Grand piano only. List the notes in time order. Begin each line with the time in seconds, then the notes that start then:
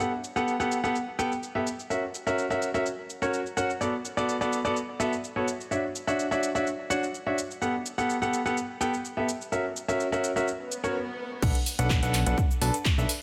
0.00 B3 G4 A4 F#5
0.36 B3 G4 A4 F#5
0.60 B3 G4 A4 F#5
0.84 B3 G4 A4 F#5
1.19 B3 G4 A4 G5
1.55 B3 G4 A4 E5
1.90 C#4 F#4 A#4 E5
2.27 C#4 F#4 A#4 E5
2.50 C#4 F#4 A#4 E5
2.74 C#4 F#4 A#4 E5
3.22 C#4 F#4 A#4 C#5
3.57 C#4 F#4 A#4 F#5
3.81 B3 F#4 A4 D5
4.17 B3 F#4 A4 D5
4.41 B3 F#4 A4 D5
4.65 B3 F#4 A4 D5
5.00 B3 F#4 A4 E5
5.36 B3 F#4 A4 C#5
5.71 D4 F#4 C#5 E5
6.07 D4 F#4 C#5 E5
6.31 D4 F#4 C#5 E5
6.55 D4 F#4 C#5 E5
6.90 D4 F#4 C#5 F#5
7.27 D4 F#4 C#5 E5
7.62 B3 G4 A4 F#5
7.98 B3 G4 A4 F#5
8.22 B3 G4 A4 F#5
8.46 B3 G4 A4 F#5
8.81 B3 G4 A4 G5
9.17 B3 G4 A4 E5
9.52 C#4 F#4 A#4 E5
9.88 C#4 F#4 A#4 E5
10.12 C#4 F#4 A#4 E5
10.36 C#4 F#4 A#4 E5
10.84 C#4 F#4 A#4 C#5
11.42 D4 A4 B4 F#5
11.79 D4 A4 B4 F#5
12.03 D4 A4 B4 F#5
12.26 D4 A4 B4 F#5
12.61 D4 A4 B4 A5
12.98 D4 A4 B4 E5